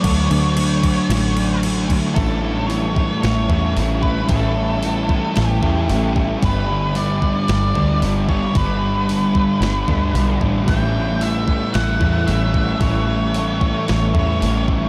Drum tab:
CC |xxxxxxxx|--------|--------|--------|
HH |--------|o-o-o-o-|o-o-o-o-|o-o-o-o-|
SD |----o---|----o---|----o--o|----o---|
BD |o--o---o|o--o-o-o|o--o-o-o|o--o-o-o|

CC |--------|--------|--------|
HH |o-o-o-o-|o-o-o-o-|o-o-o-o-|
SD |----o---|----o---|----o---|
BD |o--o-o-o|o--o-o-o|o--o-o-o|